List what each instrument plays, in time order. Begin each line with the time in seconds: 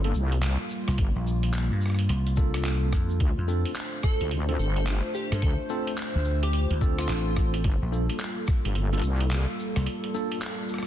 Already playing: wobble bass G1, analog synth pad G3 A#3 F4 A4
0.04 tine electric piano A#3 D4 F4 A4, closed hi-hat
0.14 wobble bass C2, shaker
0.32 closed hi-hat, shaker
0.43 clap, closed hi-hat, shaker
0.70 shaker
0.88 slap bass C2, cross-stick, closed hi-hat, shaker
0.98 wobble bass G1, kick, closed hi-hat, shaker
1.16 slap bass A#1
1.27 shaker
1.43 closed hi-hat, shaker
1.54 clap, closed hi-hat, shaker
1.71 slap bass G2
1.81 shaker
1.86 cross-stick
1.90 cross-stick
1.94 cross-stick
1.99 closed hi-hat, shaker
2.09 slap bass C2, closed hi-hat, shaker
2.27 closed hi-hat
2.37 tine electric piano A#3 D4 F4 A4, kick, shaker
2.54 cross-stick, closed hi-hat, shaker
2.65 clap, shaker
2.92 slap bass F2, kick, cross-stick, shaker
3.09 shaker
3.20 wobble bass D2, analog synth pad A3 D4 C5, kick, closed hi-hat, shaker
3.38 slap bass F2
3.48 tine electric piano C4 D4 F4 A4, shaker
3.65 closed hi-hat, shaker
3.76 clap, closed hi-hat, shaker
4.03 digital synth lead A4, kick, cross-stick, shaker
4.20 wobble bass D2, closed hi-hat, shaker
4.31 closed hi-hat, shaker
4.49 tine electric piano C4 D4 F4 A4, closed hi-hat
4.59 wobble bass G1, digital synth lead A4, shaker
4.76 digital synth lead A4, closed hi-hat, shaker
4.87 clap, closed hi-hat, shaker
5.14 digital synth lead G4, shaker
5.32 slap bass G2, digital synth lead A4, cross-stick, closed hi-hat, shaker
5.42 wobble bass D2, digital synth lead A4, kick, closed hi-hat, shaker
5.69 tine electric piano C4 D4 F4 A4, shaker
5.87 closed hi-hat, shaker
5.98 clap, closed hi-hat, shaker
6.15 slap bass D2
6.25 shaker
6.43 digital synth lead G4, closed hi-hat, shaker
6.53 digital synth lead G4, closed hi-hat, shaker
6.70 slap bass D2, closed hi-hat
6.81 tine electric piano C4 D4 F4 A4, kick, shaker
6.99 digital synth lead F4, cross-stick, closed hi-hat, shaker
7.09 slap bass A1, clap, closed hi-hat, shaker
7.36 kick, cross-stick, shaker
7.54 closed hi-hat, shaker
7.64 wobble bass G1, analog synth pad G3 A#3 F4 A4, kick, closed hi-hat, shaker
7.82 slap bass A#1
7.92 tine electric piano A#3 D4 F4 A4, shaker
8.10 closed hi-hat, shaker
8.19 clap, closed hi-hat, shaker
8.47 kick, cross-stick, shaker
8.65 wobble bass G1, closed hi-hat, shaker
8.75 closed hi-hat, shaker
8.93 tine electric piano A#3 D4 F4 A4, closed hi-hat
8.95 closed hi-hat
8.98 closed hi-hat
8.99 closed hi-hat
9.02 wobble bass C2, closed hi-hat, shaker
9.20 closed hi-hat, shaker
9.31 clap, closed hi-hat, shaker
9.59 shaker
9.76 slap bass C2, cross-stick, closed hi-hat, shaker
9.86 closed hi-hat, shaker
10.04 closed hi-hat
10.14 tine electric piano A#3 D4 F4 A4, shaker
10.31 closed hi-hat, shaker
10.41 clap, closed hi-hat, shaker
10.69 shaker
10.74 cross-stick
10.78 cross-stick
10.83 cross-stick